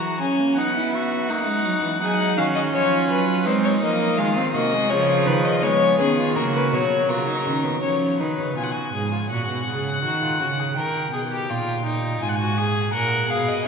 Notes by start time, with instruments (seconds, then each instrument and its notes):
Already playing: cello E3, violin F#4 A#5
0.20 cello F#3, violin C#4 G#5
0.39 cello A#3
0.56 cello B3, violin D#4 F#5
0.76 violin E4
0.93 violin F#4 E5
1.28 cello A#3, violin D#4 F#5
1.48 cello G#3
1.65 cello F#3
1.83 cello E3
2.01 cello F#3, viola D#4, violin G#4 F#5
2.07 violin G#5
2.14 violin F#5
2.37 cello D#3, viola C#4, violin F#4 F5
2.55 violin D#5
2.73 cello F3, violin F4 C#5
3.10 cello F#3, violin B4
3.46 cello G#3, viola C4, violin D#4 C5
3.64 violin C#5
3.82 cello F3, viola A#3, violin D#5
4.18 cello D#3, viola G#3, violin F4 F5
4.37 viola C4
4.54 cello C3, viola A#3, violin F#4 D#5
4.73 viola G#3
4.89 cello C#3, viola F3, violin G#4 C#5
5.26 cello D#3, violin B4
5.44 violin D#5
5.62 cello F3, viola G#3, violin B3 C#5
5.99 cello D#3, viola B3, violin C#4 G#4
6.17 violin F4
6.36 cello C#3, viola A#3, violin F#4 A#4
6.55 violin B4
6.73 cello B2, viola F#3, violin C#5
7.09 cello C#3, violin F4 A#4
7.28 violin D#4
7.45 cello D#3, violin C#4
7.64 violin B3
7.82 cello F3, violin C#4 C#5
8.20 cello D#3, violin D#4 B4
8.39 cello C#3
8.56 cello B2, violin F4 G#5
8.63 violin F#5
8.71 violin F#4 G#5
8.93 cello G#2, violin G#4
9.12 violin F4
9.30 cello A#2, violin F#4 F#5
9.49 cello B2
9.67 cello C#3, violin G#4
10.04 cello D#3, violin F#4
10.23 violin F4
10.40 cello C#3, violin F#4
10.59 violin G#4
10.76 cello D#3, violin A#4 G5
11.13 cello B2, violin G#4
11.32 violin G4
11.49 cello A#2, violin F4
11.86 violin D#4
12.22 cello G#2, violin F4 G#5
12.29 violin F#5
12.35 violin G#5
12.40 violin F#4
12.58 violin G#4
12.93 cello A#2, violin A#4 F#5
13.30 cello B2, violin G#4 F5
13.48 violin D#5